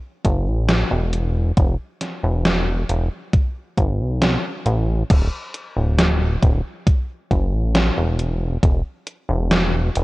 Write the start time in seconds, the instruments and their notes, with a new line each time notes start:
0.25 analog synth bass F#1, kick, closed hi-hat
0.47 analog synth bass A1
0.69 snare, closed hi-hat
0.91 analog synth bass E1
1.13 closed hi-hat
1.57 analog synth bass E1, kick, closed hi-hat
2.01 snare, closed hi-hat
2.23 analog synth bass E1
2.45 snare, closed hi-hat
2.89 analog synth bass E1, closed hi-hat
3.33 kick, closed hi-hat
3.78 analog synth bass G1, kick, closed hi-hat
4.00 analog synth bass B1
4.22 snare, closed hi-hat
4.66 analog synth bass A1, closed hi-hat
5.10 analog synth bass D1, kick, closed hi-hat, crash
5.54 closed hi-hat
5.76 analog synth bass D1
5.98 snare, closed hi-hat
6.42 analog synth bass D1, kick, closed hi-hat
6.87 kick, closed hi-hat
7.31 analog synth bass F#1, kick, closed hi-hat
7.53 analog synth bass A1
7.75 snare, closed hi-hat
7.97 analog synth bass E1
8.19 closed hi-hat
8.63 analog synth bass E1, kick, closed hi-hat
9.07 closed hi-hat
9.29 analog synth bass E1
9.51 snare, closed hi-hat
9.95 analog synth bass E1, closed hi-hat